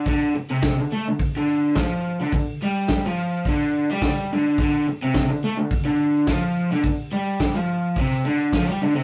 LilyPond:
<<
  \new Staff \with { instrumentName = "Overdriven electric guitar" } { \clef bass \time 4/4 \key d \major \tempo 4 = 106 d8 r16 c8 d16 a16 d8 d8. f8. d16 | d8 g8. f8. d8. g8. d8 | d8 r16 c8 d16 a16 d8 d8. f8. d16 | d8 g8. f8. c8 d8 f16 g16 d16 c16 | }
  \new DrumStaff \with { instrumentName = "Drums" } \drummode { \time 4/4 <hho bd>4 <hho bd sn>4 <hho bd>4 <hho bd sn>4 | <hho bd>4 <hho bd sn>4 <hho bd>4 <hho bd sn>4 | <hho bd>4 <hho bd sn>4 <hho bd>4 <hho bd sn>4 | <hho bd>4 <hho bd sn>4 <hho bd>4 <hho bd sn>4 | }
>>